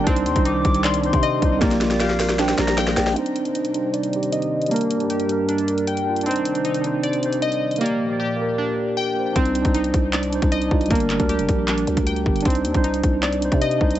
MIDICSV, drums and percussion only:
0, 0, Header, 1, 2, 480
1, 0, Start_track
1, 0, Key_signature, -3, "minor"
1, 0, Tempo, 387097
1, 83, Time_signature, 4, 2, 24, 8
1, 17351, End_track
2, 0, Start_track
2, 0, Title_t, "Drums"
2, 83, Note_on_c, 9, 36, 125
2, 83, Note_on_c, 9, 42, 82
2, 203, Note_off_c, 9, 42, 0
2, 203, Note_on_c, 9, 42, 64
2, 207, Note_off_c, 9, 36, 0
2, 323, Note_off_c, 9, 42, 0
2, 323, Note_on_c, 9, 42, 87
2, 443, Note_off_c, 9, 42, 0
2, 443, Note_on_c, 9, 42, 54
2, 444, Note_on_c, 9, 36, 91
2, 563, Note_off_c, 9, 42, 0
2, 563, Note_on_c, 9, 42, 79
2, 568, Note_off_c, 9, 36, 0
2, 687, Note_off_c, 9, 42, 0
2, 803, Note_on_c, 9, 36, 97
2, 803, Note_on_c, 9, 42, 80
2, 923, Note_off_c, 9, 42, 0
2, 923, Note_on_c, 9, 42, 60
2, 927, Note_off_c, 9, 36, 0
2, 1043, Note_off_c, 9, 42, 0
2, 1043, Note_on_c, 9, 42, 82
2, 1044, Note_on_c, 9, 39, 113
2, 1163, Note_off_c, 9, 42, 0
2, 1163, Note_on_c, 9, 42, 83
2, 1168, Note_off_c, 9, 39, 0
2, 1283, Note_off_c, 9, 42, 0
2, 1283, Note_on_c, 9, 42, 52
2, 1403, Note_off_c, 9, 42, 0
2, 1403, Note_on_c, 9, 36, 109
2, 1403, Note_on_c, 9, 42, 64
2, 1523, Note_off_c, 9, 42, 0
2, 1523, Note_on_c, 9, 42, 77
2, 1527, Note_off_c, 9, 36, 0
2, 1647, Note_off_c, 9, 42, 0
2, 1762, Note_on_c, 9, 36, 90
2, 1763, Note_on_c, 9, 42, 70
2, 1886, Note_off_c, 9, 36, 0
2, 1887, Note_off_c, 9, 42, 0
2, 2003, Note_on_c, 9, 36, 120
2, 2003, Note_on_c, 9, 38, 62
2, 2003, Note_on_c, 9, 42, 83
2, 2123, Note_off_c, 9, 38, 0
2, 2123, Note_off_c, 9, 42, 0
2, 2123, Note_on_c, 9, 38, 55
2, 2123, Note_on_c, 9, 42, 66
2, 2127, Note_off_c, 9, 36, 0
2, 2243, Note_off_c, 9, 38, 0
2, 2243, Note_off_c, 9, 42, 0
2, 2243, Note_on_c, 9, 38, 71
2, 2243, Note_on_c, 9, 42, 86
2, 2362, Note_off_c, 9, 38, 0
2, 2362, Note_off_c, 9, 42, 0
2, 2362, Note_on_c, 9, 38, 63
2, 2362, Note_on_c, 9, 42, 53
2, 2482, Note_off_c, 9, 38, 0
2, 2482, Note_off_c, 9, 42, 0
2, 2482, Note_on_c, 9, 38, 78
2, 2482, Note_on_c, 9, 42, 80
2, 2603, Note_off_c, 9, 38, 0
2, 2603, Note_on_c, 9, 38, 67
2, 2606, Note_off_c, 9, 42, 0
2, 2722, Note_off_c, 9, 38, 0
2, 2722, Note_on_c, 9, 38, 86
2, 2722, Note_on_c, 9, 46, 79
2, 2843, Note_off_c, 9, 38, 0
2, 2843, Note_on_c, 9, 38, 76
2, 2843, Note_on_c, 9, 42, 61
2, 2846, Note_off_c, 9, 46, 0
2, 2962, Note_off_c, 9, 38, 0
2, 2962, Note_off_c, 9, 42, 0
2, 2962, Note_on_c, 9, 38, 91
2, 2962, Note_on_c, 9, 42, 79
2, 3083, Note_off_c, 9, 38, 0
2, 3083, Note_off_c, 9, 42, 0
2, 3083, Note_on_c, 9, 38, 83
2, 3083, Note_on_c, 9, 42, 81
2, 3202, Note_off_c, 9, 38, 0
2, 3202, Note_off_c, 9, 42, 0
2, 3202, Note_on_c, 9, 38, 100
2, 3202, Note_on_c, 9, 42, 52
2, 3322, Note_off_c, 9, 38, 0
2, 3322, Note_off_c, 9, 42, 0
2, 3322, Note_on_c, 9, 38, 90
2, 3322, Note_on_c, 9, 42, 62
2, 3442, Note_off_c, 9, 38, 0
2, 3442, Note_off_c, 9, 42, 0
2, 3442, Note_on_c, 9, 38, 106
2, 3442, Note_on_c, 9, 42, 77
2, 3562, Note_off_c, 9, 38, 0
2, 3562, Note_on_c, 9, 38, 92
2, 3566, Note_off_c, 9, 42, 0
2, 3682, Note_off_c, 9, 38, 0
2, 3682, Note_on_c, 9, 38, 116
2, 3682, Note_on_c, 9, 42, 69
2, 3802, Note_off_c, 9, 38, 0
2, 3802, Note_on_c, 9, 38, 96
2, 3806, Note_off_c, 9, 42, 0
2, 3922, Note_on_c, 9, 42, 77
2, 3926, Note_off_c, 9, 38, 0
2, 4042, Note_off_c, 9, 42, 0
2, 4042, Note_on_c, 9, 42, 58
2, 4162, Note_off_c, 9, 42, 0
2, 4162, Note_on_c, 9, 42, 81
2, 4282, Note_off_c, 9, 42, 0
2, 4282, Note_on_c, 9, 42, 51
2, 4402, Note_off_c, 9, 42, 0
2, 4402, Note_on_c, 9, 42, 82
2, 4522, Note_off_c, 9, 42, 0
2, 4522, Note_on_c, 9, 42, 62
2, 4642, Note_off_c, 9, 42, 0
2, 4642, Note_on_c, 9, 42, 71
2, 4766, Note_off_c, 9, 42, 0
2, 4882, Note_on_c, 9, 42, 77
2, 5002, Note_off_c, 9, 42, 0
2, 5002, Note_on_c, 9, 42, 55
2, 5122, Note_off_c, 9, 42, 0
2, 5122, Note_on_c, 9, 42, 70
2, 5243, Note_off_c, 9, 42, 0
2, 5243, Note_on_c, 9, 42, 60
2, 5362, Note_off_c, 9, 42, 0
2, 5362, Note_on_c, 9, 42, 81
2, 5483, Note_off_c, 9, 42, 0
2, 5483, Note_on_c, 9, 42, 50
2, 5607, Note_off_c, 9, 42, 0
2, 5723, Note_on_c, 9, 42, 42
2, 5783, Note_off_c, 9, 42, 0
2, 5783, Note_on_c, 9, 42, 50
2, 5843, Note_off_c, 9, 42, 0
2, 5843, Note_on_c, 9, 42, 60
2, 5903, Note_off_c, 9, 42, 0
2, 5903, Note_on_c, 9, 42, 70
2, 5963, Note_off_c, 9, 42, 0
2, 5963, Note_on_c, 9, 42, 58
2, 6083, Note_off_c, 9, 42, 0
2, 6083, Note_on_c, 9, 42, 80
2, 6203, Note_off_c, 9, 42, 0
2, 6203, Note_on_c, 9, 42, 48
2, 6323, Note_off_c, 9, 42, 0
2, 6323, Note_on_c, 9, 42, 81
2, 6443, Note_off_c, 9, 42, 0
2, 6443, Note_on_c, 9, 42, 61
2, 6563, Note_off_c, 9, 42, 0
2, 6563, Note_on_c, 9, 42, 71
2, 6687, Note_off_c, 9, 42, 0
2, 6803, Note_on_c, 9, 42, 74
2, 6923, Note_off_c, 9, 42, 0
2, 6923, Note_on_c, 9, 42, 56
2, 7043, Note_off_c, 9, 42, 0
2, 7043, Note_on_c, 9, 42, 69
2, 7163, Note_off_c, 9, 42, 0
2, 7163, Note_on_c, 9, 42, 59
2, 7283, Note_off_c, 9, 42, 0
2, 7283, Note_on_c, 9, 42, 82
2, 7403, Note_off_c, 9, 42, 0
2, 7403, Note_on_c, 9, 42, 52
2, 7527, Note_off_c, 9, 42, 0
2, 7643, Note_on_c, 9, 42, 39
2, 7703, Note_off_c, 9, 42, 0
2, 7703, Note_on_c, 9, 42, 48
2, 7763, Note_off_c, 9, 42, 0
2, 7763, Note_on_c, 9, 42, 62
2, 7823, Note_off_c, 9, 42, 0
2, 7823, Note_on_c, 9, 42, 70
2, 7883, Note_off_c, 9, 42, 0
2, 7883, Note_on_c, 9, 42, 61
2, 8003, Note_off_c, 9, 42, 0
2, 8003, Note_on_c, 9, 42, 81
2, 8123, Note_off_c, 9, 42, 0
2, 8123, Note_on_c, 9, 42, 49
2, 8243, Note_off_c, 9, 42, 0
2, 8243, Note_on_c, 9, 42, 83
2, 8363, Note_off_c, 9, 42, 0
2, 8363, Note_on_c, 9, 42, 61
2, 8483, Note_off_c, 9, 42, 0
2, 8483, Note_on_c, 9, 42, 67
2, 8607, Note_off_c, 9, 42, 0
2, 8723, Note_on_c, 9, 42, 76
2, 8843, Note_off_c, 9, 42, 0
2, 8843, Note_on_c, 9, 42, 57
2, 8963, Note_off_c, 9, 42, 0
2, 8963, Note_on_c, 9, 42, 67
2, 9083, Note_off_c, 9, 42, 0
2, 9083, Note_on_c, 9, 42, 62
2, 9203, Note_off_c, 9, 42, 0
2, 9203, Note_on_c, 9, 42, 81
2, 9323, Note_off_c, 9, 42, 0
2, 9323, Note_on_c, 9, 42, 50
2, 9447, Note_off_c, 9, 42, 0
2, 9563, Note_on_c, 9, 42, 41
2, 9623, Note_off_c, 9, 42, 0
2, 9623, Note_on_c, 9, 42, 51
2, 9683, Note_off_c, 9, 42, 0
2, 9683, Note_on_c, 9, 42, 61
2, 9743, Note_off_c, 9, 42, 0
2, 9743, Note_on_c, 9, 42, 70
2, 9867, Note_off_c, 9, 42, 0
2, 11603, Note_on_c, 9, 36, 122
2, 11603, Note_on_c, 9, 42, 80
2, 11723, Note_off_c, 9, 42, 0
2, 11723, Note_on_c, 9, 42, 61
2, 11727, Note_off_c, 9, 36, 0
2, 11843, Note_off_c, 9, 42, 0
2, 11843, Note_on_c, 9, 42, 86
2, 11964, Note_off_c, 9, 42, 0
2, 11964, Note_on_c, 9, 36, 92
2, 11964, Note_on_c, 9, 42, 52
2, 12083, Note_off_c, 9, 42, 0
2, 12083, Note_on_c, 9, 42, 83
2, 12088, Note_off_c, 9, 36, 0
2, 12203, Note_off_c, 9, 42, 0
2, 12203, Note_on_c, 9, 42, 62
2, 12323, Note_off_c, 9, 42, 0
2, 12323, Note_on_c, 9, 36, 97
2, 12323, Note_on_c, 9, 42, 71
2, 12447, Note_off_c, 9, 36, 0
2, 12447, Note_off_c, 9, 42, 0
2, 12563, Note_on_c, 9, 42, 79
2, 12564, Note_on_c, 9, 39, 113
2, 12683, Note_off_c, 9, 42, 0
2, 12683, Note_on_c, 9, 42, 58
2, 12688, Note_off_c, 9, 39, 0
2, 12803, Note_off_c, 9, 42, 0
2, 12803, Note_on_c, 9, 42, 70
2, 12923, Note_off_c, 9, 42, 0
2, 12923, Note_on_c, 9, 36, 105
2, 12923, Note_on_c, 9, 42, 62
2, 13043, Note_off_c, 9, 42, 0
2, 13043, Note_on_c, 9, 42, 82
2, 13047, Note_off_c, 9, 36, 0
2, 13163, Note_off_c, 9, 42, 0
2, 13163, Note_on_c, 9, 42, 52
2, 13282, Note_on_c, 9, 36, 89
2, 13287, Note_off_c, 9, 42, 0
2, 13403, Note_on_c, 9, 42, 42
2, 13406, Note_off_c, 9, 36, 0
2, 13463, Note_off_c, 9, 42, 0
2, 13463, Note_on_c, 9, 42, 51
2, 13523, Note_off_c, 9, 42, 0
2, 13523, Note_on_c, 9, 36, 125
2, 13523, Note_on_c, 9, 42, 61
2, 13583, Note_off_c, 9, 42, 0
2, 13583, Note_on_c, 9, 42, 72
2, 13643, Note_off_c, 9, 42, 0
2, 13643, Note_on_c, 9, 42, 62
2, 13647, Note_off_c, 9, 36, 0
2, 13763, Note_off_c, 9, 42, 0
2, 13763, Note_on_c, 9, 42, 85
2, 13764, Note_on_c, 9, 39, 95
2, 13883, Note_off_c, 9, 42, 0
2, 13883, Note_on_c, 9, 42, 52
2, 13884, Note_on_c, 9, 36, 91
2, 13888, Note_off_c, 9, 39, 0
2, 14003, Note_off_c, 9, 42, 0
2, 14003, Note_on_c, 9, 42, 82
2, 14008, Note_off_c, 9, 36, 0
2, 14123, Note_off_c, 9, 42, 0
2, 14123, Note_on_c, 9, 42, 63
2, 14243, Note_off_c, 9, 42, 0
2, 14243, Note_on_c, 9, 36, 95
2, 14243, Note_on_c, 9, 42, 71
2, 14367, Note_off_c, 9, 36, 0
2, 14367, Note_off_c, 9, 42, 0
2, 14483, Note_on_c, 9, 42, 79
2, 14484, Note_on_c, 9, 39, 113
2, 14603, Note_off_c, 9, 42, 0
2, 14603, Note_on_c, 9, 42, 57
2, 14608, Note_off_c, 9, 39, 0
2, 14722, Note_off_c, 9, 42, 0
2, 14722, Note_on_c, 9, 42, 70
2, 14842, Note_off_c, 9, 42, 0
2, 14842, Note_on_c, 9, 36, 104
2, 14842, Note_on_c, 9, 42, 62
2, 14962, Note_off_c, 9, 42, 0
2, 14962, Note_on_c, 9, 42, 83
2, 14966, Note_off_c, 9, 36, 0
2, 15082, Note_off_c, 9, 42, 0
2, 15082, Note_on_c, 9, 42, 52
2, 15202, Note_on_c, 9, 36, 89
2, 15206, Note_off_c, 9, 42, 0
2, 15323, Note_on_c, 9, 42, 42
2, 15326, Note_off_c, 9, 36, 0
2, 15382, Note_off_c, 9, 42, 0
2, 15382, Note_on_c, 9, 42, 51
2, 15443, Note_off_c, 9, 42, 0
2, 15443, Note_on_c, 9, 36, 123
2, 15443, Note_on_c, 9, 42, 63
2, 15503, Note_off_c, 9, 42, 0
2, 15503, Note_on_c, 9, 42, 70
2, 15563, Note_off_c, 9, 42, 0
2, 15563, Note_on_c, 9, 42, 60
2, 15567, Note_off_c, 9, 36, 0
2, 15683, Note_off_c, 9, 42, 0
2, 15683, Note_on_c, 9, 42, 83
2, 15803, Note_off_c, 9, 42, 0
2, 15803, Note_on_c, 9, 36, 91
2, 15803, Note_on_c, 9, 42, 51
2, 15922, Note_off_c, 9, 42, 0
2, 15922, Note_on_c, 9, 42, 83
2, 15927, Note_off_c, 9, 36, 0
2, 16043, Note_off_c, 9, 42, 0
2, 16043, Note_on_c, 9, 42, 64
2, 16163, Note_off_c, 9, 42, 0
2, 16163, Note_on_c, 9, 36, 97
2, 16163, Note_on_c, 9, 42, 73
2, 16287, Note_off_c, 9, 36, 0
2, 16287, Note_off_c, 9, 42, 0
2, 16403, Note_on_c, 9, 42, 80
2, 16404, Note_on_c, 9, 39, 110
2, 16523, Note_off_c, 9, 42, 0
2, 16523, Note_on_c, 9, 42, 56
2, 16528, Note_off_c, 9, 39, 0
2, 16643, Note_off_c, 9, 42, 0
2, 16643, Note_on_c, 9, 42, 70
2, 16762, Note_on_c, 9, 36, 100
2, 16763, Note_off_c, 9, 42, 0
2, 16763, Note_on_c, 9, 42, 62
2, 16883, Note_off_c, 9, 42, 0
2, 16883, Note_on_c, 9, 42, 82
2, 16886, Note_off_c, 9, 36, 0
2, 17003, Note_off_c, 9, 42, 0
2, 17003, Note_on_c, 9, 42, 50
2, 17122, Note_on_c, 9, 36, 86
2, 17127, Note_off_c, 9, 42, 0
2, 17243, Note_on_c, 9, 42, 42
2, 17246, Note_off_c, 9, 36, 0
2, 17303, Note_off_c, 9, 42, 0
2, 17303, Note_on_c, 9, 42, 52
2, 17351, Note_off_c, 9, 42, 0
2, 17351, End_track
0, 0, End_of_file